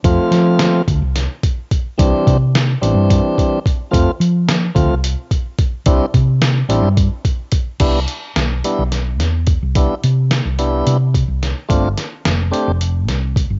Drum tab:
CC |-------|-------|-------|-------|
HH |xxxxxxx|xxxxxxx|xxxxxxx|xxxxxxx|
SD |-oo-o--|--o----|--o----|--o----|
BD |o--o-oo|oo--ooo|o--o-oo|oo--ooo|

CC |x------|-------|-------|
HH |xxxxxxx|xxxxxxx|xxxxxxx|
SD |--o-oo-|--o---o|-oo--o-|
BD |o-----o|o----o-|o-----o|